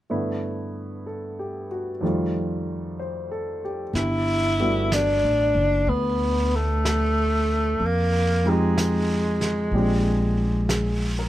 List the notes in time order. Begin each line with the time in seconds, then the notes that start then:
0.10 G2 D3 A3 B3 E4
1.07 A4
1.39 G4
1.71 F#4
2.01 F2 D#3 G3 A3
2.05 F4
2.99 C5
3.31 A4
3.65 G4
3.93 G1 E4, brush sweep, snare
4.60 D3 G3 A3 B3 F#4
4.92 D4, brush sweep, snare, hi-hat pedal
5.23 A1
5.55 F#1
5.87 D2 B3, brush sweep
6.56 A3
6.85 brush sweep, snare, hi-hat pedal
7.80 F2, brush sweep
7.86 A#3
8.45 F3 G#3 C4 D#4 G4
8.78 brush sweep, snare, hi-hat pedal
9.41 snare
9.71 A#1 F3 G#3 C4 D4 G4, brush sweep
10.69 G#4, brush sweep, snare, hi-hat pedal
11.19 A#4